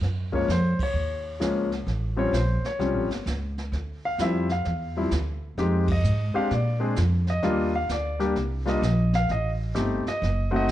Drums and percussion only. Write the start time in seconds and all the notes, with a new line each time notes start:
0.03 brush sweep, snare
0.33 kick
0.49 snare, hi-hat pedal
0.79 kick, ride
0.96 brush sweep
1.41 snare, hi-hat pedal
1.72 snare
1.88 brush sweep, snare
2.34 snare, hi-hat pedal
2.64 snare
2.80 brush sweep, snare
3.11 snare
3.27 snare, hi-hat pedal
3.58 snare
3.73 brush sweep, snare
4.19 snare, hi-hat pedal
4.49 snare
4.65 brush sweep, snare
5.11 snare, hi-hat pedal
5.58 brush sweep, snare
5.88 kick, ride
6.04 hi-hat pedal
6.51 brush sweep, snare
6.96 snare, hi-hat pedal
7.27 snare
7.42 brush sweep, snare
7.89 snare, hi-hat pedal
8.20 snare
8.36 brush sweep, snare
8.67 snare
8.83 snare, hi-hat pedal
9.14 snare
9.29 brush sweep, snare
9.75 snare, hi-hat pedal
10.06 snare
10.23 brush sweep, snare